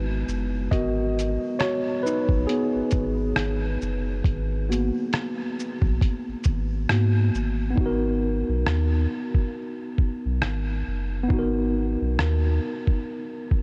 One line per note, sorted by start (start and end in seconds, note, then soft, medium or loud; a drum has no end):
0.00 0.24 G#1 medium
0.00 7.78 G#3 soft
0.00 0.73 B3 soft
0.00 2.06 D#4 medium
0.00 0.73 F#4 medium
0.00 0.68 A#4 medium
0.00 2.03 B4 medium
0.28 0.68 F#1 medium
0.28 shaker soft
0.71 1.38 G#1 loud
0.71 2.48 B3 medium
0.71 1.57 F#4 medium
0.71 4.21 A#4 medium
0.71 1.55 D#5 loud
0.71 kick loud
0.71 closed hi-hat medium
1.19 closed hi-hat soft
1.19 shaker soft
1.59 2.02 F#4 medium
1.59 2.05 C#5 loud
1.59 cross-stick loud
1.59 closed hi-hat medium
2.03 2.25 D#4 medium
2.03 2.23 B4 medium
2.03 shaker medium
2.29 2.46 A#1 medium
2.29 kick loud
2.47 4.68 B3 medium
2.47 6.84 G#4 medium
2.47 closed hi-hat medium
2.75 2.82 G#1 soft
2.91 3.33 G#1 medium
2.91 kick medium
2.91 closed hi-hat soft
2.91 shaker soft
3.36 3.77 G#1 medium
3.36 cross-stick loud
3.36 closed hi-hat medium
3.82 4.22 F#1 medium
3.82 shaker soft
4.24 4.91 G#1 loud
4.24 kick loud
4.24 closed hi-hat medium
4.69 5.97 A#3 medium
4.69 5.97 B3 medium
4.69 5.98 F#4 medium
4.69 closed hi-hat soft
4.69 shaker soft
5.13 cross-stick loud
5.13 closed hi-hat medium
5.59 shaker medium
5.82 5.99 A#1 medium
5.82 kick medium
6.01 kick loud
6.01 closed hi-hat medium
6.28 6.35 G#1 soft
6.44 6.86 G#1 medium
6.44 kick medium
6.44 closed hi-hat soft
6.44 shaker soft
6.89 7.31 G#2 loud
6.89 7.29 A#3 soft
6.89 7.30 B3 soft
6.89 7.30 F#4 medium
6.89 cross-stick loud
6.89 closed hi-hat medium
7.35 7.75 G#1 medium
7.35 shaker soft
7.71 11.22 B3 medium
7.76 8.44 G#1 loud
7.76 11.25 D#4 medium
7.76 kick loud
7.81 11.28 F#4 medium
7.86 11.30 A#4 medium
8.49 8.65 B1 loud
8.67 9.07 D#2 loud
8.67 cross-stick loud
9.35 kick medium
9.98 kick medium
10.26 10.41 B1 medium
10.42 10.83 G#1 medium
10.42 cross-stick medium
10.87 11.28 F#1 medium
11.23 13.62 B3 medium
11.29 11.97 G#1 loud
11.29 13.62 D#4 medium
11.29 kick loud
11.34 13.62 F#4 medium
11.39 13.62 A#4 medium
12.02 12.18 B1 medium
12.19 12.60 D#2 medium
12.19 cross-stick loud
12.87 kick medium
13.51 kick medium